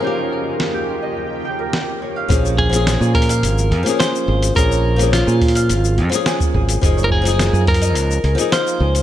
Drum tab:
HH |--------------------------------|x-----x-x---xxx-x---x-x-x-----x-|x-----x-x---xxx-x---x-x-x-----x-|x-----x-x---xxx-x---x-x-x-----x-|
SH |--------------------------------|x-x---x-x-x---x-x-x---x-x-x---x-|x-x---x-x-x---x-x-x---x-x-x---x-|x-x---x-x-x---x-x-x---x-x-x---x-|
SD |--------o---------------o-------|--------o---------------o-------|--------o---------------o-------|--------o---------------o-------|
BD |--------------------------------|o---o-------o-------------------|o-----------o-------------o-o---|o---o-------o-------------------|